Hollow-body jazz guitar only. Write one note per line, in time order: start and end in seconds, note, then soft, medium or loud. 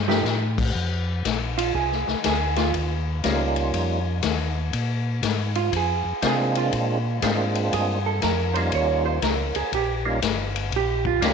0.08 0.23 F3 medium
0.08 0.23 A3 medium
0.08 0.23 D#4 medium
0.08 0.23 G4 medium
1.58 1.74 F4 medium
1.75 2.21 G#4 medium
2.26 2.56 G#4 medium
2.57 2.73 F4 medium
5.56 5.72 F4 medium
5.77 6.21 G#4 medium
6.27 6.56 G#4 medium
6.57 6.67 F4 loud
7.74 8.05 G#4 medium
8.06 8.22 A4 medium
8.23 8.54 A#4 medium
8.54 8.71 C5 medium
8.75 9.05 C#5 medium
9.06 9.22 C5 medium
9.23 9.54 A#4 medium
9.56 9.72 G#4 medium
9.75 9.94 G4 medium
10.76 11.06 G4 medium
11.07 11.22 F4 medium
11.24 11.33 G4 medium